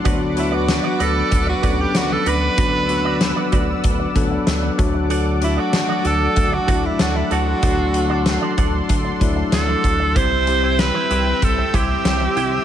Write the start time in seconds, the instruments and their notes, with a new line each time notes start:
Already playing: analog synth pad D5 F#5
0.04 analog synth bass D2, tine electric piano F#3 B3 D4 F#4, clean electric guitar F#4 B4 D5, analog synth pad B4 D6, kick, closed hi-hat
0.20 muted clean electric guitar stroke
0.36 tine electric piano F#3 B3 D4 F#4, alto saxophone E4, muted clean electric guitar stroke, closed hi-hat
0.52 clean electric guitar F#4 B4 D5, alto saxophone F#4
0.68 muted clean electric guitar stroke, snare, closed hi-hat
0.83 clean electric guitar F#4 B4 D5
0.99 analog synth bass D2, clean electric guitar F#4 B4 D5, alto saxophone A4, closed hi-hat
1.15 muted clean electric guitar stroke
1.31 analog synth bass D2, muted clean electric guitar stroke, kick, closed hi-hat
1.47 alto saxophone F#4, muted clean electric guitar stroke
1.62 analog synth bass D2, tine electric piano F#3 B3 C#4 A4, clean electric guitar F#4 B4 D5, kick, closed hi-hat
1.70 tine electric piano D4
1.78 alto saxophone G4, muted clean electric guitar stroke
1.94 analog synth bass D2, alto saxophone F#4, snare, closed hi-hat
2.10 alto saxophone A4, muted clean electric guitar stroke
2.26 analog synth bass D2, clean electric guitar F#4 B4 D5, alto saxophone B4, closed hi-hat
2.42 muted clean electric guitar stroke
2.57 analog synth bass D2, tine electric piano F#3 B3 D4 F#4, clean electric guitar F#4 B4 D5, analog synth pad E6, kick, closed hi-hat
2.73 muted clean electric guitar stroke
2.89 tine electric piano F#3 B3 D4 F#4, muted clean electric guitar stroke, closed hi-hat
3.05 clean electric guitar F#4 B4 D5
3.21 muted clean electric guitar stroke, snare, closed hi-hat
3.36 clean electric guitar F#4 B4 D5
3.52 analog synth bass D2, clean electric guitar F#4 B4 D5, kick, closed hi-hat
3.68 muted clean electric guitar stroke
3.84 analog synth bass D2, muted clean electric guitar stroke, kick, closed hi-hat
4.00 muted clean electric guitar stroke
4.15 analog synth bass D2, tine electric piano F#3 B3 D4 A4, kick, closed hi-hat
4.31 muted clean electric guitar stroke
4.47 analog synth bass D2, muted clean electric guitar stroke, snare, closed hi-hat
4.63 muted clean electric guitar stroke
4.78 analog synth bass D2, tine electric piano F#3 A3 D4 F#4, analog synth pad A4 D6, kick, closed hi-hat
4.94 muted clean electric guitar stroke
5.10 clean electric guitar F#4 A4 D5, closed hi-hat
5.26 muted clean electric guitar stroke
5.41 tine electric piano F#3 A3 D4 F#4, alto saxophone E4, muted clean electric guitar stroke, closed hi-hat
5.57 clean electric guitar F#4 A4 D5, alto saxophone F#4
5.73 muted clean electric guitar stroke, snare, closed hi-hat
5.88 clean electric guitar F#4 A4 D5
6.04 analog synth bass D2, clean electric guitar F#4 A4 D5, alto saxophone A4, closed hi-hat
6.36 analog synth bass D2, muted clean electric guitar stroke, kick, closed hi-hat
6.52 alto saxophone F#4, muted clean electric guitar stroke
6.67 analog synth bass D2, tine electric piano F#3 A3 D4 E4, clean electric guitar F#4 A4 D5, kick, closed hi-hat
6.84 alto saxophone E4, muted clean electric guitar stroke
6.99 analog synth bass D2, alto saxophone F#4, snare, closed hi-hat
7.15 alto saxophone E4, muted clean electric guitar stroke
7.31 analog synth bass D2, clean electric guitar F#4 A4 D5, alto saxophone F#4, analog synth pad C6, closed hi-hat
7.46 muted clean electric guitar stroke
7.62 analog synth bass D2, tine electric piano F#3 A3 D4 F#4, clean electric guitar F#4 A4 D5, kick, closed hi-hat
7.78 muted clean electric guitar stroke
7.94 tine electric piano F#3 A3 D4 F#4, muted clean electric guitar stroke, closed hi-hat
8.10 clean electric guitar F#4 A4 D5
8.26 muted clean electric guitar stroke, snare, closed hi-hat
8.42 clean electric guitar F#4 A4 D5
8.57 analog synth bass D2, clean electric guitar F#4 A4 D5, kick, closed hi-hat
8.73 muted clean electric guitar stroke
8.89 analog synth bass D2, muted clean electric guitar stroke, kick, closed hi-hat
9.04 muted clean electric guitar stroke
9.20 analog synth bass D2, tine electric piano F#3 A3 D4 E4, kick, closed hi-hat
9.36 muted clean electric guitar stroke
9.52 analog synth bass D2, alto saxophone A4, muted clean electric guitar stroke, snare, closed hi-hat
9.68 muted clean electric guitar stroke
9.84 analog synth bass D2, kick, closed hi-hat
10.00 muted clean electric guitar stroke
10.15 analog synth bass C2, tine electric piano G3 C4 E4 G4, analog synth pad C4 E5 G5 E6, clean electric guitar E4 G4 C5, alto saxophone C5, kick, closed hi-hat
10.31 muted clean electric guitar stroke
10.47 tine electric piano G3 C4 E4 G4, muted clean electric guitar stroke, closed hi-hat
10.63 clean electric guitar E4 G4 C5
10.79 alto saxophone B4, muted clean electric guitar stroke, snare, closed hi-hat
10.94 clean electric guitar E4 G4 C5
11.10 analog synth bass C2, clean electric guitar E4 G4 C5, closed hi-hat
11.42 analog synth bass C2, alto saxophone A4, muted clean electric guitar stroke, kick, closed hi-hat
11.58 muted clean electric guitar stroke
11.73 analog synth bass C2, tine electric piano G3 C4 E4 G4, clean electric guitar E4 G4 C5, alto saxophone G4, kick, closed hi-hat
12.05 analog synth bass C2, snare, closed hi-hat
12.21 muted clean electric guitar stroke
12.36 analog synth bass C2, clean electric guitar E4 G4 C5, closed hi-hat
12.52 muted clean electric guitar stroke